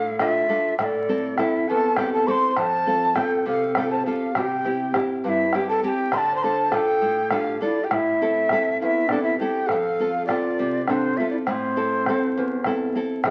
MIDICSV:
0, 0, Header, 1, 5, 480
1, 0, Start_track
1, 0, Key_signature, 0, "minor"
1, 0, Tempo, 593472
1, 636, Time_signature, 6, 3, 24, 8
1, 10760, End_track
2, 0, Start_track
2, 0, Title_t, "Quena"
2, 0, Program_c, 0, 77
2, 0, Note_on_c, 0, 77, 90
2, 129, Note_off_c, 0, 77, 0
2, 159, Note_on_c, 0, 76, 88
2, 606, Note_off_c, 0, 76, 0
2, 651, Note_on_c, 0, 76, 78
2, 680, Note_on_c, 0, 74, 85
2, 688, Note_off_c, 0, 76, 0
2, 1114, Note_on_c, 0, 76, 84
2, 1126, Note_off_c, 0, 74, 0
2, 1361, Note_on_c, 0, 81, 94
2, 1374, Note_off_c, 0, 76, 0
2, 1591, Note_on_c, 0, 79, 94
2, 1603, Note_off_c, 0, 81, 0
2, 1714, Note_off_c, 0, 79, 0
2, 1727, Note_on_c, 0, 81, 84
2, 1838, Note_on_c, 0, 86, 88
2, 1850, Note_off_c, 0, 81, 0
2, 1865, Note_on_c, 0, 84, 95
2, 1873, Note_off_c, 0, 86, 0
2, 2026, Note_off_c, 0, 84, 0
2, 2026, Note_on_c, 0, 84, 63
2, 2079, Note_on_c, 0, 81, 106
2, 2091, Note_off_c, 0, 84, 0
2, 2554, Note_on_c, 0, 79, 88
2, 2566, Note_off_c, 0, 81, 0
2, 2796, Note_off_c, 0, 79, 0
2, 2814, Note_on_c, 0, 77, 89
2, 3030, Note_off_c, 0, 77, 0
2, 3041, Note_on_c, 0, 79, 89
2, 3166, Note_on_c, 0, 81, 83
2, 3178, Note_off_c, 0, 79, 0
2, 3280, Note_off_c, 0, 81, 0
2, 3285, Note_on_c, 0, 77, 77
2, 3529, Note_on_c, 0, 79, 81
2, 3541, Note_off_c, 0, 77, 0
2, 4027, Note_off_c, 0, 79, 0
2, 4249, Note_on_c, 0, 77, 81
2, 4280, Note_on_c, 0, 76, 88
2, 4288, Note_off_c, 0, 77, 0
2, 4487, Note_on_c, 0, 79, 86
2, 4499, Note_off_c, 0, 76, 0
2, 4595, Note_off_c, 0, 79, 0
2, 4600, Note_on_c, 0, 81, 92
2, 4711, Note_off_c, 0, 81, 0
2, 4722, Note_on_c, 0, 81, 81
2, 4757, Note_on_c, 0, 79, 88
2, 4765, Note_off_c, 0, 81, 0
2, 4961, Note_on_c, 0, 84, 94
2, 4973, Note_off_c, 0, 79, 0
2, 4994, Note_on_c, 0, 81, 102
2, 5002, Note_off_c, 0, 84, 0
2, 5142, Note_off_c, 0, 81, 0
2, 5147, Note_on_c, 0, 84, 67
2, 5206, Note_on_c, 0, 81, 90
2, 5218, Note_off_c, 0, 84, 0
2, 5450, Note_on_c, 0, 79, 99
2, 5463, Note_off_c, 0, 81, 0
2, 5920, Note_off_c, 0, 79, 0
2, 5925, Note_on_c, 0, 77, 89
2, 6145, Note_off_c, 0, 77, 0
2, 6158, Note_on_c, 0, 74, 80
2, 6342, Note_on_c, 0, 79, 63
2, 6354, Note_off_c, 0, 74, 0
2, 6411, Note_on_c, 0, 76, 97
2, 6423, Note_off_c, 0, 79, 0
2, 7119, Note_off_c, 0, 76, 0
2, 7124, Note_on_c, 0, 77, 81
2, 7158, Note_on_c, 0, 76, 88
2, 7166, Note_off_c, 0, 77, 0
2, 7349, Note_on_c, 0, 74, 84
2, 7362, Note_off_c, 0, 76, 0
2, 7464, Note_off_c, 0, 74, 0
2, 7468, Note_on_c, 0, 76, 82
2, 7584, Note_off_c, 0, 76, 0
2, 7596, Note_on_c, 0, 79, 81
2, 7821, Note_on_c, 0, 77, 96
2, 7833, Note_off_c, 0, 79, 0
2, 8296, Note_off_c, 0, 77, 0
2, 8301, Note_on_c, 0, 74, 84
2, 8757, Note_off_c, 0, 74, 0
2, 8790, Note_on_c, 0, 74, 75
2, 8818, Note_on_c, 0, 72, 82
2, 8826, Note_off_c, 0, 74, 0
2, 9036, Note_on_c, 0, 76, 78
2, 9048, Note_off_c, 0, 72, 0
2, 9136, Note_off_c, 0, 76, 0
2, 9141, Note_on_c, 0, 74, 67
2, 9190, Note_off_c, 0, 74, 0
2, 9273, Note_on_c, 0, 72, 80
2, 10202, Note_off_c, 0, 72, 0
2, 10723, Note_on_c, 0, 77, 90
2, 10760, Note_off_c, 0, 77, 0
2, 10760, End_track
3, 0, Start_track
3, 0, Title_t, "Pan flute"
3, 0, Program_c, 1, 75
3, 0, Note_on_c, 1, 69, 69
3, 143, Note_off_c, 1, 69, 0
3, 171, Note_on_c, 1, 65, 68
3, 612, Note_off_c, 1, 65, 0
3, 643, Note_on_c, 1, 69, 69
3, 1112, Note_on_c, 1, 64, 69
3, 1124, Note_off_c, 1, 69, 0
3, 1361, Note_on_c, 1, 69, 74
3, 1373, Note_off_c, 1, 64, 0
3, 1602, Note_on_c, 1, 67, 71
3, 1614, Note_off_c, 1, 69, 0
3, 1720, Note_off_c, 1, 67, 0
3, 1724, Note_on_c, 1, 69, 73
3, 1841, Note_on_c, 1, 72, 78
3, 1853, Note_off_c, 1, 69, 0
3, 2018, Note_off_c, 1, 72, 0
3, 2018, Note_on_c, 1, 72, 55
3, 2084, Note_off_c, 1, 72, 0
3, 2084, Note_on_c, 1, 72, 82
3, 2352, Note_off_c, 1, 72, 0
3, 2570, Note_on_c, 1, 69, 73
3, 2801, Note_off_c, 1, 69, 0
3, 2806, Note_on_c, 1, 69, 71
3, 3026, Note_off_c, 1, 69, 0
3, 3059, Note_on_c, 1, 69, 66
3, 3164, Note_on_c, 1, 72, 68
3, 3176, Note_off_c, 1, 69, 0
3, 3271, Note_off_c, 1, 72, 0
3, 3275, Note_on_c, 1, 67, 67
3, 3518, Note_on_c, 1, 66, 67
3, 3531, Note_off_c, 1, 67, 0
3, 3615, Note_off_c, 1, 66, 0
3, 3615, Note_on_c, 1, 67, 67
3, 4022, Note_off_c, 1, 67, 0
3, 4253, Note_on_c, 1, 64, 71
3, 4498, Note_on_c, 1, 67, 70
3, 4510, Note_off_c, 1, 64, 0
3, 4598, Note_off_c, 1, 67, 0
3, 4603, Note_on_c, 1, 69, 74
3, 4713, Note_off_c, 1, 69, 0
3, 4736, Note_on_c, 1, 67, 75
3, 4971, Note_on_c, 1, 74, 76
3, 4983, Note_off_c, 1, 67, 0
3, 5123, Note_off_c, 1, 74, 0
3, 5128, Note_on_c, 1, 72, 55
3, 5202, Note_off_c, 1, 72, 0
3, 5202, Note_on_c, 1, 72, 78
3, 5441, Note_on_c, 1, 69, 82
3, 5453, Note_off_c, 1, 72, 0
3, 5920, Note_off_c, 1, 69, 0
3, 5935, Note_on_c, 1, 67, 67
3, 6150, Note_off_c, 1, 67, 0
3, 6163, Note_on_c, 1, 64, 69
3, 6330, Note_on_c, 1, 67, 51
3, 6342, Note_off_c, 1, 64, 0
3, 6395, Note_on_c, 1, 64, 72
3, 6407, Note_off_c, 1, 67, 0
3, 6908, Note_off_c, 1, 64, 0
3, 7110, Note_on_c, 1, 64, 69
3, 7344, Note_on_c, 1, 62, 60
3, 7356, Note_off_c, 1, 64, 0
3, 7452, Note_off_c, 1, 62, 0
3, 7457, Note_on_c, 1, 64, 65
3, 7578, Note_off_c, 1, 64, 0
3, 7587, Note_on_c, 1, 67, 75
3, 7824, Note_on_c, 1, 69, 70
3, 7837, Note_off_c, 1, 67, 0
3, 8293, Note_off_c, 1, 69, 0
3, 8297, Note_on_c, 1, 65, 72
3, 8755, Note_off_c, 1, 65, 0
3, 8795, Note_on_c, 1, 62, 61
3, 9028, Note_on_c, 1, 65, 68
3, 9040, Note_off_c, 1, 62, 0
3, 9144, Note_off_c, 1, 65, 0
3, 9149, Note_on_c, 1, 64, 62
3, 9198, Note_off_c, 1, 64, 0
3, 9272, Note_on_c, 1, 60, 60
3, 10202, Note_off_c, 1, 60, 0
3, 10710, Note_on_c, 1, 69, 69
3, 10760, Note_off_c, 1, 69, 0
3, 10760, End_track
4, 0, Start_track
4, 0, Title_t, "Nylon-string guitar"
4, 0, Program_c, 2, 24
4, 0, Note_on_c, 2, 45, 60
4, 157, Note_on_c, 2, 62, 45
4, 159, Note_on_c, 2, 65, 42
4, 161, Note_on_c, 2, 69, 48
4, 383, Note_off_c, 2, 45, 0
4, 384, Note_off_c, 2, 62, 0
4, 388, Note_off_c, 2, 65, 0
4, 392, Note_off_c, 2, 69, 0
4, 394, Note_on_c, 2, 62, 43
4, 398, Note_on_c, 2, 65, 40
4, 402, Note_on_c, 2, 69, 47
4, 587, Note_off_c, 2, 62, 0
4, 589, Note_off_c, 2, 65, 0
4, 592, Note_off_c, 2, 69, 0
4, 638, Note_on_c, 2, 45, 63
4, 879, Note_on_c, 2, 60, 44
4, 883, Note_on_c, 2, 69, 47
4, 884, Note_on_c, 2, 64, 39
4, 1103, Note_off_c, 2, 45, 0
4, 1109, Note_off_c, 2, 60, 0
4, 1110, Note_off_c, 2, 64, 0
4, 1115, Note_off_c, 2, 69, 0
4, 1118, Note_on_c, 2, 60, 45
4, 1123, Note_on_c, 2, 64, 43
4, 1125, Note_on_c, 2, 69, 50
4, 1372, Note_on_c, 2, 40, 59
4, 1502, Note_off_c, 2, 60, 0
4, 1503, Note_off_c, 2, 64, 0
4, 1506, Note_off_c, 2, 69, 0
4, 1593, Note_on_c, 2, 60, 45
4, 1600, Note_on_c, 2, 64, 39
4, 1605, Note_on_c, 2, 69, 50
4, 1827, Note_off_c, 2, 60, 0
4, 1831, Note_off_c, 2, 40, 0
4, 1833, Note_off_c, 2, 69, 0
4, 1835, Note_off_c, 2, 64, 0
4, 1837, Note_on_c, 2, 60, 45
4, 1843, Note_on_c, 2, 69, 51
4, 1845, Note_on_c, 2, 64, 42
4, 2029, Note_off_c, 2, 60, 0
4, 2033, Note_off_c, 2, 69, 0
4, 2034, Note_off_c, 2, 64, 0
4, 2074, Note_on_c, 2, 41, 63
4, 2319, Note_on_c, 2, 60, 44
4, 2323, Note_on_c, 2, 65, 40
4, 2323, Note_on_c, 2, 69, 47
4, 2538, Note_off_c, 2, 60, 0
4, 2541, Note_off_c, 2, 65, 0
4, 2542, Note_off_c, 2, 41, 0
4, 2544, Note_off_c, 2, 69, 0
4, 2547, Note_on_c, 2, 60, 48
4, 2553, Note_on_c, 2, 65, 44
4, 2554, Note_on_c, 2, 69, 52
4, 2796, Note_on_c, 2, 48, 61
4, 2936, Note_off_c, 2, 60, 0
4, 2938, Note_off_c, 2, 65, 0
4, 2940, Note_off_c, 2, 69, 0
4, 3042, Note_on_c, 2, 60, 46
4, 3047, Note_on_c, 2, 65, 39
4, 3053, Note_on_c, 2, 69, 50
4, 3263, Note_off_c, 2, 48, 0
4, 3275, Note_off_c, 2, 60, 0
4, 3276, Note_off_c, 2, 65, 0
4, 3284, Note_off_c, 2, 69, 0
4, 3284, Note_on_c, 2, 60, 45
4, 3286, Note_on_c, 2, 65, 38
4, 3293, Note_on_c, 2, 69, 47
4, 3474, Note_off_c, 2, 60, 0
4, 3475, Note_off_c, 2, 65, 0
4, 3479, Note_off_c, 2, 69, 0
4, 3529, Note_on_c, 2, 48, 60
4, 3757, Note_on_c, 2, 60, 42
4, 3759, Note_on_c, 2, 64, 42
4, 3763, Note_on_c, 2, 67, 48
4, 3987, Note_off_c, 2, 60, 0
4, 3990, Note_off_c, 2, 48, 0
4, 3990, Note_off_c, 2, 64, 0
4, 3990, Note_off_c, 2, 67, 0
4, 3996, Note_on_c, 2, 60, 49
4, 4000, Note_on_c, 2, 64, 41
4, 4002, Note_on_c, 2, 67, 51
4, 4237, Note_on_c, 2, 43, 60
4, 4381, Note_off_c, 2, 60, 0
4, 4383, Note_off_c, 2, 64, 0
4, 4384, Note_off_c, 2, 67, 0
4, 4481, Note_on_c, 2, 60, 43
4, 4487, Note_on_c, 2, 64, 38
4, 4487, Note_on_c, 2, 67, 47
4, 4702, Note_off_c, 2, 60, 0
4, 4704, Note_off_c, 2, 43, 0
4, 4708, Note_off_c, 2, 64, 0
4, 4708, Note_off_c, 2, 67, 0
4, 4712, Note_on_c, 2, 60, 43
4, 4717, Note_on_c, 2, 64, 39
4, 4720, Note_on_c, 2, 67, 47
4, 4907, Note_off_c, 2, 60, 0
4, 4910, Note_off_c, 2, 64, 0
4, 4910, Note_off_c, 2, 67, 0
4, 4957, Note_on_c, 2, 50, 59
4, 5202, Note_on_c, 2, 62, 41
4, 5206, Note_on_c, 2, 65, 38
4, 5209, Note_on_c, 2, 69, 50
4, 5417, Note_off_c, 2, 62, 0
4, 5422, Note_off_c, 2, 65, 0
4, 5422, Note_off_c, 2, 69, 0
4, 5423, Note_off_c, 2, 50, 0
4, 5427, Note_on_c, 2, 62, 47
4, 5432, Note_on_c, 2, 65, 43
4, 5433, Note_on_c, 2, 69, 50
4, 5674, Note_on_c, 2, 45, 61
4, 5815, Note_off_c, 2, 62, 0
4, 5818, Note_off_c, 2, 69, 0
4, 5819, Note_off_c, 2, 65, 0
4, 5911, Note_on_c, 2, 62, 42
4, 5916, Note_on_c, 2, 65, 39
4, 5918, Note_on_c, 2, 69, 47
4, 6142, Note_off_c, 2, 45, 0
4, 6142, Note_off_c, 2, 62, 0
4, 6147, Note_off_c, 2, 65, 0
4, 6149, Note_off_c, 2, 69, 0
4, 6152, Note_on_c, 2, 62, 44
4, 6156, Note_on_c, 2, 65, 41
4, 6161, Note_on_c, 2, 69, 48
4, 6346, Note_off_c, 2, 62, 0
4, 6350, Note_off_c, 2, 65, 0
4, 6351, Note_off_c, 2, 69, 0
4, 6396, Note_on_c, 2, 45, 62
4, 6644, Note_on_c, 2, 64, 41
4, 6646, Note_on_c, 2, 60, 43
4, 6650, Note_on_c, 2, 69, 48
4, 6862, Note_off_c, 2, 45, 0
4, 6877, Note_off_c, 2, 60, 0
4, 6879, Note_off_c, 2, 64, 0
4, 6884, Note_off_c, 2, 69, 0
4, 6886, Note_on_c, 2, 60, 46
4, 6890, Note_on_c, 2, 64, 41
4, 6894, Note_on_c, 2, 69, 52
4, 7135, Note_on_c, 2, 40, 60
4, 7267, Note_off_c, 2, 60, 0
4, 7269, Note_off_c, 2, 64, 0
4, 7271, Note_off_c, 2, 69, 0
4, 7371, Note_on_c, 2, 60, 45
4, 7374, Note_on_c, 2, 64, 40
4, 7377, Note_on_c, 2, 69, 45
4, 7592, Note_off_c, 2, 40, 0
4, 7600, Note_off_c, 2, 64, 0
4, 7601, Note_off_c, 2, 60, 0
4, 7602, Note_off_c, 2, 69, 0
4, 7610, Note_on_c, 2, 60, 45
4, 7610, Note_on_c, 2, 64, 42
4, 7613, Note_on_c, 2, 69, 50
4, 7797, Note_off_c, 2, 64, 0
4, 7798, Note_off_c, 2, 60, 0
4, 7798, Note_off_c, 2, 69, 0
4, 7858, Note_on_c, 2, 41, 65
4, 8085, Note_on_c, 2, 60, 45
4, 8089, Note_on_c, 2, 65, 42
4, 8094, Note_on_c, 2, 69, 45
4, 8313, Note_off_c, 2, 41, 0
4, 8313, Note_off_c, 2, 65, 0
4, 8315, Note_off_c, 2, 60, 0
4, 8320, Note_off_c, 2, 69, 0
4, 8324, Note_on_c, 2, 60, 47
4, 8324, Note_on_c, 2, 65, 42
4, 8330, Note_on_c, 2, 69, 53
4, 8565, Note_on_c, 2, 48, 59
4, 8705, Note_off_c, 2, 65, 0
4, 8706, Note_off_c, 2, 60, 0
4, 8709, Note_off_c, 2, 69, 0
4, 8804, Note_on_c, 2, 60, 45
4, 8806, Note_on_c, 2, 65, 41
4, 8812, Note_on_c, 2, 69, 45
4, 9027, Note_off_c, 2, 48, 0
4, 9046, Note_off_c, 2, 60, 0
4, 9047, Note_off_c, 2, 65, 0
4, 9053, Note_off_c, 2, 69, 0
4, 9056, Note_on_c, 2, 60, 44
4, 9058, Note_on_c, 2, 65, 40
4, 9062, Note_on_c, 2, 69, 48
4, 9240, Note_off_c, 2, 60, 0
4, 9241, Note_off_c, 2, 65, 0
4, 9244, Note_off_c, 2, 69, 0
4, 9279, Note_on_c, 2, 45, 63
4, 9514, Note_on_c, 2, 60, 44
4, 9517, Note_on_c, 2, 64, 40
4, 9520, Note_on_c, 2, 69, 47
4, 9743, Note_off_c, 2, 45, 0
4, 9765, Note_off_c, 2, 60, 0
4, 9767, Note_off_c, 2, 64, 0
4, 9767, Note_off_c, 2, 69, 0
4, 9774, Note_on_c, 2, 60, 46
4, 9777, Note_on_c, 2, 64, 41
4, 9778, Note_on_c, 2, 69, 53
4, 10008, Note_on_c, 2, 40, 61
4, 10151, Note_off_c, 2, 60, 0
4, 10152, Note_off_c, 2, 64, 0
4, 10152, Note_off_c, 2, 69, 0
4, 10239, Note_on_c, 2, 60, 44
4, 10243, Note_on_c, 2, 64, 41
4, 10244, Note_on_c, 2, 69, 48
4, 10466, Note_off_c, 2, 60, 0
4, 10468, Note_off_c, 2, 40, 0
4, 10472, Note_off_c, 2, 64, 0
4, 10474, Note_off_c, 2, 69, 0
4, 10476, Note_on_c, 2, 60, 44
4, 10480, Note_on_c, 2, 64, 40
4, 10486, Note_on_c, 2, 69, 49
4, 10668, Note_off_c, 2, 60, 0
4, 10671, Note_off_c, 2, 64, 0
4, 10673, Note_off_c, 2, 69, 0
4, 10716, Note_on_c, 2, 41, 65
4, 10760, Note_off_c, 2, 41, 0
4, 10760, End_track
5, 0, Start_track
5, 0, Title_t, "Bombo"
5, 157, Note_on_c, 9, 37, 68
5, 157, Note_on_c, 9, 43, 62
5, 238, Note_off_c, 9, 37, 0
5, 238, Note_off_c, 9, 43, 0
5, 637, Note_on_c, 9, 37, 61
5, 637, Note_on_c, 9, 43, 59
5, 718, Note_off_c, 9, 37, 0
5, 718, Note_off_c, 9, 43, 0
5, 1113, Note_on_c, 9, 37, 64
5, 1113, Note_on_c, 9, 43, 63
5, 1194, Note_off_c, 9, 37, 0
5, 1194, Note_off_c, 9, 43, 0
5, 1589, Note_on_c, 9, 37, 65
5, 1589, Note_on_c, 9, 43, 63
5, 1670, Note_off_c, 9, 37, 0
5, 1670, Note_off_c, 9, 43, 0
5, 2074, Note_on_c, 9, 37, 59
5, 2074, Note_on_c, 9, 43, 59
5, 2155, Note_off_c, 9, 37, 0
5, 2155, Note_off_c, 9, 43, 0
5, 2552, Note_on_c, 9, 37, 65
5, 2552, Note_on_c, 9, 43, 68
5, 2633, Note_off_c, 9, 37, 0
5, 2633, Note_off_c, 9, 43, 0
5, 3033, Note_on_c, 9, 37, 71
5, 3033, Note_on_c, 9, 43, 69
5, 3114, Note_off_c, 9, 37, 0
5, 3114, Note_off_c, 9, 43, 0
5, 3520, Note_on_c, 9, 37, 69
5, 3520, Note_on_c, 9, 43, 72
5, 3600, Note_off_c, 9, 37, 0
5, 3600, Note_off_c, 9, 43, 0
5, 3771, Note_on_c, 9, 37, 21
5, 3852, Note_off_c, 9, 37, 0
5, 3995, Note_on_c, 9, 37, 69
5, 3995, Note_on_c, 9, 43, 70
5, 4076, Note_off_c, 9, 37, 0
5, 4076, Note_off_c, 9, 43, 0
5, 4470, Note_on_c, 9, 37, 62
5, 4550, Note_off_c, 9, 37, 0
5, 4948, Note_on_c, 9, 37, 59
5, 4948, Note_on_c, 9, 43, 59
5, 5029, Note_off_c, 9, 37, 0
5, 5029, Note_off_c, 9, 43, 0
5, 5434, Note_on_c, 9, 37, 59
5, 5434, Note_on_c, 9, 43, 66
5, 5514, Note_off_c, 9, 37, 0
5, 5514, Note_off_c, 9, 43, 0
5, 5908, Note_on_c, 9, 37, 68
5, 5908, Note_on_c, 9, 43, 63
5, 5989, Note_off_c, 9, 37, 0
5, 5989, Note_off_c, 9, 43, 0
5, 6397, Note_on_c, 9, 37, 65
5, 6397, Note_on_c, 9, 43, 64
5, 6478, Note_off_c, 9, 37, 0
5, 6478, Note_off_c, 9, 43, 0
5, 6869, Note_on_c, 9, 37, 63
5, 6869, Note_on_c, 9, 43, 63
5, 6950, Note_off_c, 9, 37, 0
5, 6950, Note_off_c, 9, 43, 0
5, 7351, Note_on_c, 9, 37, 59
5, 7351, Note_on_c, 9, 43, 61
5, 7432, Note_off_c, 9, 37, 0
5, 7432, Note_off_c, 9, 43, 0
5, 7835, Note_on_c, 9, 37, 58
5, 7835, Note_on_c, 9, 43, 61
5, 7916, Note_off_c, 9, 37, 0
5, 7916, Note_off_c, 9, 43, 0
5, 8320, Note_on_c, 9, 37, 56
5, 8320, Note_on_c, 9, 43, 58
5, 8401, Note_off_c, 9, 37, 0
5, 8401, Note_off_c, 9, 43, 0
5, 8796, Note_on_c, 9, 37, 57
5, 8796, Note_on_c, 9, 43, 59
5, 8876, Note_off_c, 9, 37, 0
5, 8876, Note_off_c, 9, 43, 0
5, 9275, Note_on_c, 9, 37, 56
5, 9275, Note_on_c, 9, 43, 55
5, 9356, Note_off_c, 9, 37, 0
5, 9356, Note_off_c, 9, 43, 0
5, 9402, Note_on_c, 9, 37, 18
5, 9483, Note_off_c, 9, 37, 0
5, 9757, Note_on_c, 9, 37, 60
5, 9757, Note_on_c, 9, 43, 64
5, 9838, Note_off_c, 9, 37, 0
5, 9838, Note_off_c, 9, 43, 0
5, 9868, Note_on_c, 9, 37, 20
5, 9949, Note_off_c, 9, 37, 0
5, 10226, Note_on_c, 9, 37, 64
5, 10226, Note_on_c, 9, 43, 61
5, 10307, Note_off_c, 9, 37, 0
5, 10307, Note_off_c, 9, 43, 0
5, 10470, Note_on_c, 9, 37, 21
5, 10551, Note_off_c, 9, 37, 0
5, 10706, Note_on_c, 9, 37, 71
5, 10706, Note_on_c, 9, 43, 74
5, 10760, Note_off_c, 9, 37, 0
5, 10760, Note_off_c, 9, 43, 0
5, 10760, End_track
0, 0, End_of_file